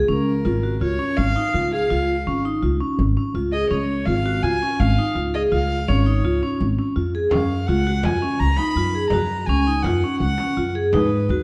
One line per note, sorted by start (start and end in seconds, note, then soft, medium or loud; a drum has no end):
0.09 0.42 C#2 medium
0.09 0.30 C#4 medium
0.09 0.78 A#4 medium
0.45 0.78 G#1 medium
0.45 0.56 F4 medium
0.63 0.74 F#4 medium
0.81 0.98 C#2 medium
0.81 0.92 F4 medium
0.81 1.19 C#5 medium
0.99 1.21 C#4 medium
1.17 1.34 G#1 medium
1.17 1.72 F5 loud
1.36 1.47 D#4 medium
1.53 1.87 C#2 medium
1.53 1.65 F4 medium
1.73 1.83 G#4 medium
1.73 2.41 F5 medium
1.91 2.24 C#2 medium
1.91 2.12 F4 medium
2.27 2.60 G#1 medium
2.27 2.38 C#4 medium
2.45 2.56 D#4 medium
2.63 2.79 C#2 medium
2.63 2.74 F4 medium
2.81 3.02 C#4 medium
2.99 3.15 G#1 medium
3.17 3.28 C#4 medium
3.34 3.68 C#2 medium
3.34 3.46 F4 medium
3.52 3.64 G#4 medium
3.52 3.69 D#5 medium
3.70 4.04 C#2 medium
3.70 3.93 C#4 medium
3.70 4.07 C#5 medium
4.06 4.40 G#1 medium
4.06 4.18 F4 medium
4.06 4.45 F5 medium
4.26 4.36 F#4 medium
4.43 4.60 C#2 medium
4.43 4.55 F4 medium
4.43 4.81 G#5 medium
4.62 4.84 C#4 medium
4.79 4.96 G#1 medium
4.79 5.16 F5 medium
4.99 5.09 D#4 medium
5.15 5.48 C#2 medium
5.15 5.26 F4 medium
5.34 5.45 G#4 medium
5.34 5.42 D#5 medium
5.52 5.85 C#2 medium
5.52 5.74 F4 medium
5.52 5.90 F5 medium
5.88 6.21 G#1 medium
5.88 5.99 C#4 medium
5.88 6.61 C#5 medium
6.06 6.17 D#4 medium
6.24 6.40 C#2 medium
6.24 6.35 F4 medium
6.43 6.64 C#4 medium
6.60 6.77 G#1 medium
6.78 6.89 C#4 medium
6.96 7.29 F2 medium
6.96 7.07 F4 medium
7.15 7.25 G#4 medium
7.31 7.66 F#2 medium
7.31 7.54 C#4 medium
7.31 7.69 F5 medium
7.31 frame drum medium
7.67 8.02 C#2 medium
7.67 7.79 F4 medium
7.67 8.07 F#5 medium
7.87 7.98 F#4 medium
8.03 8.21 F#2 medium
8.03 8.15 F4 medium
8.03 8.41 G#5 medium
8.03 frame drum medium
8.21 8.44 C#4 medium
8.21 frame drum soft
8.40 8.57 C#2 medium
8.40 8.59 A#5 medium
8.40 frame drum soft
8.57 8.70 D#4 medium
8.57 9.09 B5 medium
8.57 frame drum soft
8.76 9.09 F#2 medium
8.76 8.88 F4 medium
8.95 9.06 G#4 medium
9.10 9.45 F#2 medium
9.10 9.35 F#4 medium
9.10 9.48 A#5 medium
9.10 frame drum medium
9.46 9.81 C#2 medium
9.46 9.60 C#4 medium
9.46 9.84 G#5 medium
9.67 9.78 D#4 medium
9.82 10.01 F#2 medium
9.82 9.96 F4 medium
9.82 10.19 F#5 medium
9.82 frame drum medium
10.02 10.25 C#4 medium
10.02 frame drum soft
10.20 10.37 C#2 medium
10.20 10.71 F#5 medium
10.38 10.50 C#4 medium
10.38 frame drum soft
10.57 10.90 F#2 medium
10.57 10.68 F4 medium
10.75 10.86 G#4 medium
10.93 11.26 G#2 medium
10.93 11.16 D#4 medium
10.93 11.43 B4 medium
10.93 frame drum medium
11.29 11.43 D#2 medium
11.29 11.41 F#4 medium